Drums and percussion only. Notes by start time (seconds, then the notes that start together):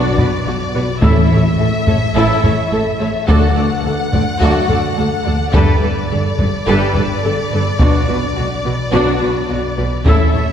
0.18 taiko low
1.02 taiko
1.87 taiko low
2.44 taiko low
3.29 taiko
4.13 taiko low
4.69 taiko low
5.54 taiko
6.39 taiko low
6.95 taiko low
7.79 taiko
10.06 taiko